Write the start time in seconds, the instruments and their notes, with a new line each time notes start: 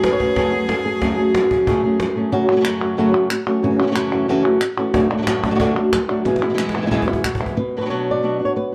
Already playing: nylon-string guitar F#2, violin G#4
0.04 nylon-string guitar B4, muted nylon-string guitar stroke, cajon slap
0.12 nylon-string guitar C#5
0.20 nylon-string guitar F#3 A3 C#4 F#4 G#4, cajon bass
0.36 nylon-string guitar F#2 C#3 F#3 A3 C#4 G#4 B4, cajon bass, cajon slap
0.52 nylon-string guitar F#3 A3 C#4 F#4 G#4
0.69 nylon-string guitar A4, muted nylon-string guitar stroke, cajon slap
0.85 nylon-string guitar F#3 A3 C#4 G#4
1.01 nylon-string guitar F#2 C#3 F#3 A3 C#4 G#4, cajon bass, cajon slap
1.18 nylon-string guitar F#3 A3 C#4 G#4
1.34 muted nylon-string guitar stroke, cajon slap
1.50 nylon-string guitar F#3 A3 C#4 G#4, cajon bass
1.67 nylon-string guitar F#2 C#3 F#3 A3 C#4 G#4, cajon bass
1.84 nylon-string guitar F#3 A3 C#4 G#4
2.00 muted nylon-string guitar stroke, cajon slap
2.15 nylon-string guitar F#3 A3 C#4 G#4 C#5
2.32 nylon-string guitar F#2 C#3 F#3 A3 C#4 F#4, muted nylon-string guitar stroke
2.48 nylon-string guitar C#3 F#3 A3 C#4 F#4
2.52 nylon-string guitar C#3 A3 C#4 F#4
2.56 nylon-string guitar F#3 A3 C#4 F#4
2.61 nylon-string guitar C#3 F#3 A3 C#4 F#4, muted nylon-string guitar stroke
2.65 nylon-string guitar F#2 C#3 F#3 A3 C#4 F#4, clap
2.80 nylon-string guitar F#3 A3 C#4 F#4
2.97 nylon-string guitar F#2 C#3 F#3 A3 C#4 F#4
3.14 nylon-string guitar F#3 A3 C#4 F#4
3.30 muted nylon-string guitar stroke, clap
3.47 nylon-string guitar F#3 A3 C#4 F#4, clap
3.63 nylon-string guitar F#2 C#3 E3 A3 C#4 F#4, muted nylon-string guitar stroke
3.78 nylon-string guitar C#3 E3 A3 C#4 F#4
3.83 nylon-string guitar A3 C#4 F#4
3.87 nylon-string guitar C#3 E3 A3 C#4 F#4
3.91 nylon-string guitar C#3 E3 A3 C#4 F#4, muted nylon-string guitar stroke
3.96 nylon-string guitar F#2 C#3 E3 A3 C#4 F#4, clap
4.11 nylon-string guitar E3 A3 C#4 F#4
4.28 nylon-string guitar F#2 C#3 E3 A3 C#4 F#4
4.44 nylon-string guitar E3 A3 C#4 F#4
4.61 muted nylon-string guitar stroke, clap
4.77 nylon-string guitar E3 A3 C#4 F#4, clap
4.93 nylon-string guitar F#2 D3 F#3 A3 D4 F#4, muted nylon-string guitar stroke, cajon bass
5.10 nylon-string guitar D3 F#3 A3 D4 F#4
5.18 nylon-string guitar A2 D3 A3 D4 F#4
5.22 nylon-string guitar A2 D3 A3 D4 F#4
5.27 nylon-string guitar F#2 A2 D3 A3 D4 F#4, muted nylon-string guitar stroke, cajon slap, clap
5.43 nylon-string guitar D3 F#3 A3 D4 F#4, cajon bass, clap
5.47 nylon-string guitar D3 F#3 D4 F#4
5.51 nylon-string guitar D3 A3 D4 F#4
5.55 nylon-string guitar F#2 F#3 A3 D4 F#4
5.60 nylon-string guitar A2 D3 F#3 A3 D4 F#4, cajon bass
5.76 nylon-string guitar D3 F#3 A3 D4 F#4
5.92 muted nylon-string guitar stroke, cajon bass, cajon slap, clap
6.08 nylon-string guitar D3 F#3 A3 D4 F#4, cajon slap
6.25 nylon-string guitar F#2 B2 E3 B3 E4 G#4, muted nylon-string guitar stroke, cajon slap
6.36 cajon slap
6.42 nylon-string guitar E3 G#3 B3 E4 G#4
6.49 nylon-string guitar B2 E3 G#3 B3 E4
6.54 nylon-string guitar B2 E3 G#3 B3 E4, muted nylon-string guitar stroke
6.58 nylon-string guitar F#2 B2 E3 G#3 B3 E4, clap
6.69 cajon slap
6.74 nylon-string guitar B2 E3 B3 E4 G#4, clap
6.78 nylon-string guitar B2 E3 B3 G#4
6.83 nylon-string guitar B2 E4 G#4
6.87 nylon-string guitar E3 B3 E4 G#4
6.91 nylon-string guitar F#2 B2 E3 G#3 B3 E4 G#4, cajon bass
7.02 cajon bass
7.07 nylon-string guitar E3 G#3 B3 E4 G#4
7.13 cajon bass
7.24 nylon-string guitar F#4, muted nylon-string guitar stroke, cajon bass, clap
7.35 cajon bass
7.40 nylon-string guitar E3 G#3 B3 E4 G#4, clap
7.46 cajon bass
7.57 nylon-string guitar B2 B4, muted nylon-string guitar stroke
7.77 nylon-string guitar F#3 B3 D4 F#4 B4
7.81 nylon-string guitar F#3 B3 D4 F#4
7.85 nylon-string guitar F#3 B3 D4 F#4
7.90 nylon-string guitar B2 F#3 B3 D4 F#4 C#5
8.11 nylon-string guitar D5
8.22 nylon-string guitar B2 F#3 B3 D4 F#4
8.39 nylon-string guitar B3 D4 F#4
8.45 nylon-string guitar C#5
8.56 nylon-string guitar B4, muted nylon-string guitar stroke